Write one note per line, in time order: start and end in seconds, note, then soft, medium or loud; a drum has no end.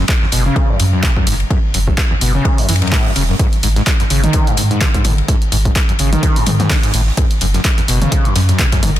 0.08 kick loud
0.08 snare loud
0.08 clap loud
0.08 ride medium
0.22 0.25 E2 medium
0.22 snare soft
0.32 0.49 F#1 medium
0.32 0.43 B2 medium
0.32 snare medium
0.32 open hi-hat loud
0.32 ride medium
0.46 0.71 C#3 loud
0.56 kick loud
0.56 ride medium
0.69 0.78 F#2 loud
0.79 0.97 F#2 medium
0.79 0.84 F#2 medium
0.79 open hi-hat loud
0.79 ride medium
0.93 1.05 F#2 medium
1.03 1.11 C#3 medium
1.03 kick loud
1.03 snare loud
1.03 clap loud
1.03 ride medium
1.16 1.25 F#2 medium
1.16 kick medium
1.27 1.44 F#1 medium
1.27 1.34 G#2 medium
1.27 open hi-hat loud
1.27 ride medium
1.40 ride soft
1.50 1.58 F#2 medium
1.50 kick loud
1.50 ride medium
1.74 1.91 F#1 loud
1.74 1.78 F#2 medium
1.74 open hi-hat loud
1.74 ride medium
1.87 1.93 F#2 medium
1.87 kick medium
1.98 kick loud
1.98 snare loud
1.98 clap loud
1.98 ride medium
2.11 2.14 E2 medium
2.21 2.38 F#1 medium
2.21 2.32 B2 medium
2.21 open hi-hat loud
2.21 ride medium
2.35 2.60 C#3 loud
2.45 kick loud
2.45 ride medium
2.58 2.67 F#2 loud
2.58 open hi-hat medium
2.68 2.86 F#2 medium
2.68 2.73 E3 medium
2.68 snare medium
2.68 open hi-hat loud
2.68 ride medium
2.76 snare medium
2.76 ride medium
2.82 2.94 F#2 loud
2.82 snare medium
2.82 ride medium
2.86 snare medium
2.86 ride medium
2.92 3.07 A2 loud
2.92 kick loud
2.92 snare loud
2.92 clap loud
2.92 open hi-hat medium
3.06 3.11 F#2 loud
3.16 3.33 E1 medium
3.16 3.23 C#3 medium
3.16 open hi-hat medium
3.16 ride medium
3.29 3.35 F#2 loud
3.29 snare soft
3.39 3.47 G#2 medium
3.39 kick loud
3.39 closed hi-hat medium
3.39 ride medium
3.53 closed hi-hat soft
3.63 3.80 G#1 loud
3.63 3.67 G#2 medium
3.63 open hi-hat loud
3.63 ride medium
3.76 3.82 G#2 medium
3.76 snare soft
3.76 closed hi-hat soft
3.87 kick loud
3.87 snare loud
3.87 clap loud
3.87 closed hi-hat medium
3.87 ride medium
4.00 4.03 F#2 medium
4.00 snare soft
4.00 closed hi-hat soft
4.10 4.27 G#1 medium
4.10 4.21 C#3 medium
4.10 snare soft
4.10 open hi-hat loud
4.10 ride medium
4.24 4.49 D#3 loud
4.24 closed hi-hat soft
4.24 mid tom medium
4.33 kick loud
4.33 closed hi-hat medium
4.33 ride medium
4.47 4.56 G#2 loud
4.47 closed hi-hat soft
4.57 4.62 G#2 medium
4.57 4.75 G#2 medium
4.57 open hi-hat loud
4.57 ride medium
4.71 4.83 G#2 medium
4.71 closed hi-hat soft
4.81 4.89 D#3 medium
4.81 kick loud
4.81 snare loud
4.81 clap loud
4.81 closed hi-hat medium
4.81 ride medium
4.94 5.03 G#2 medium
4.94 kick medium
4.94 closed hi-hat soft
5.04 5.22 G#1 medium
5.04 5.12 A2 medium
5.04 open hi-hat loud
5.04 mid tom medium
5.04 ride medium
5.18 ride soft
5.28 5.36 G#2 medium
5.28 kick loud
5.28 closed hi-hat medium
5.28 ride medium
5.42 closed hi-hat soft
5.52 5.69 G#1 loud
5.52 5.56 G#2 medium
5.52 open hi-hat medium
5.52 ride medium
5.65 5.71 G#2 medium
5.65 kick medium
5.65 closed hi-hat soft
5.75 kick loud
5.75 snare loud
5.75 clap loud
5.75 closed hi-hat medium
5.75 ride medium
5.89 5.92 F#2 medium
5.89 closed hi-hat soft
5.99 6.16 G#1 medium
5.99 6.10 C#3 medium
5.99 open hi-hat loud
5.99 ride medium
6.12 6.38 D#3 medium
6.12 closed hi-hat medium
6.12 mid tom medium
6.23 kick loud
6.23 closed hi-hat medium
6.23 ride medium
6.36 6.45 G#2 loud
6.36 open hi-hat medium
6.46 6.51 G#2 medium
6.46 6.64 G#2 medium
6.46 open hi-hat loud
6.46 mid tom medium
6.46 ride medium
6.59 6.72 G#2 medium
6.59 snare medium
6.59 closed hi-hat soft
6.59 mid tom medium
6.70 6.77 D#3 medium
6.70 kick loud
6.70 snare loud
6.70 clap loud
6.70 closed hi-hat medium
6.70 open hi-hat medium
6.83 6.92 G#2 medium
6.83 closed hi-hat soft
6.93 7.11 G#1 medium
6.93 7.01 A2 medium
6.93 open hi-hat medium
6.93 ride medium
7.07 snare soft
7.17 7.25 F#2 medium
7.17 kick loud
7.17 closed hi-hat medium
7.17 ride loud
7.31 closed hi-hat soft
7.41 7.58 F#1 medium
7.41 7.45 F#2 medium
7.41 open hi-hat medium
7.41 ride medium
7.54 7.60 F#2 medium
7.54 snare medium
7.54 closed hi-hat soft
7.65 kick loud
7.65 snare loud
7.65 clap loud
7.65 closed hi-hat medium
7.65 ride medium
7.77 7.81 E2 medium
7.77 snare soft
7.77 closed hi-hat soft
7.88 8.05 F#1 medium
7.88 7.99 B2 medium
7.88 snare medium
7.88 open hi-hat medium
7.88 ride medium
8.02 8.27 C#3 medium
8.02 closed hi-hat medium
8.02 mid tom medium
8.12 kick loud
8.12 closed hi-hat medium
8.12 ride medium
8.25 8.34 F#2 loud
8.25 closed hi-hat soft
8.36 8.40 F#2 medium
8.36 8.53 F#2 medium
8.36 snare loud
8.36 open hi-hat loud
8.36 ride medium
8.49 8.61 F#2 medium
8.49 snare soft
8.49 closed hi-hat soft
8.59 8.66 C#3 medium
8.59 kick loud
8.59 snare soft
8.59 clap loud
8.59 closed hi-hat medium
8.59 ride medium
8.72 8.81 F#2 medium
8.72 kick medium
8.72 snare medium
8.72 closed hi-hat medium
8.72 ride medium
8.83 9.00 F#1 medium
8.83 8.90 G#2 medium
8.83 snare soft
8.83 open hi-hat medium
8.83 mid tom medium
8.96 ride medium